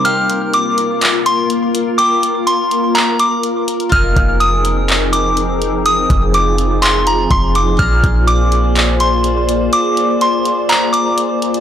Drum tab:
HH |x-x-x-x-x-x-x-x-|x-x-x-x-x-x-x-xx|x-x-x-x-x-x-x-x-|x-x-x-x-x-x-x-x-|
CP |--------x-------|--------x-------|--------x-------|--------x-------|
BD |----------------|----------------|o-o-------------|--o---------o---|

HH |x-x-x-x-x-x-x-x-|x-x-x-x-x-x-x-xx|
CP |--------x-------|--------x-------|
BD |o-o-------------|----------------|